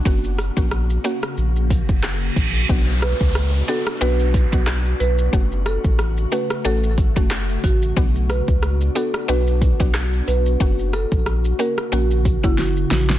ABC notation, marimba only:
X:1
M:4/4
L:1/16
Q:"Swing 16ths" 1/4=91
K:Bm
V:1 name="Marimba"
z16 | z2 B z3 A z B3 z3 B z | z2 A z3 B z A3 z3 F z | z2 B z3 A z B3 z3 B z |
z2 A z3 ^A z F z2 E F z F z |]